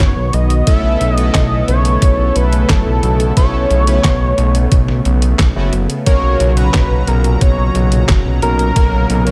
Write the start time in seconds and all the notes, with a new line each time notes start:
Already playing: D#3 F#3 B3
0.00 F#1 C#5, kick, snare, clap, closed hi-hat
0.17 B1
0.33 B1 D#5, closed hi-hat
0.50 closed hi-hat
0.67 B1 C#3 A3 B3 C#4 E4 A4 E5, kick, closed hi-hat
1.01 B1, closed hi-hat
1.12 D#5
1.18 A3 B3 C#4 E4 A4, closed hi-hat
1.34 B1 D#5, kick, snare, clap, closed hi-hat
1.68 B1 C#5, closed hi-hat
1.85 closed hi-hat
2.02 B1, kick, closed hi-hat
2.36 B1 B4, closed hi-hat
2.53 closed hi-hat
2.69 F#1 A4, kick, snare, clap, closed hi-hat
2.86 B1
3.03 B1, closed hi-hat
3.20 closed hi-hat
3.37 B1 A3 B3 C#4 E4 A4 C#5, kick, closed hi-hat
3.71 B1, closed hi-hat
3.87 A3 B3 C#4 E4 B4, closed hi-hat
4.04 B1, kick, snare, clap, closed hi-hat
4.38 B1, closed hi-hat
4.55 closed hi-hat
4.72 B1, kick, closed hi-hat
4.88 snare
5.05 B1, closed hi-hat
5.22 closed hi-hat
5.39 B1, kick, snare, clap, closed hi-hat
5.56 F#1 A3 B3 C#4 E4 F#4
5.73 F#1, closed hi-hat
5.90 closed hi-hat
6.06 B1 A#2 F#3 A#3 C#4 F#4 A#4 C#5, kick, closed hi-hat
6.40 B1, closed hi-hat
6.57 F#3 C#4 F#4 B4 A#5, closed hi-hat
6.74 B1, kick, snare, clap, closed hi-hat
7.08 B1 A#4, closed hi-hat
7.24 closed hi-hat
7.41 B1 C#5, kick, closed hi-hat
7.75 B1, closed hi-hat
7.92 closed hi-hat
8.09 F#1, kick, snare, clap, closed hi-hat
8.26 B1
8.42 B1 A#4, closed hi-hat
8.59 closed hi-hat
8.76 B1 F#3 A#3 C#4 F#4 A#4, kick, closed hi-hat
9.10 B1, closed hi-hat
9.27 F#3 A#3 C#4 F#4 C#5, closed hi-hat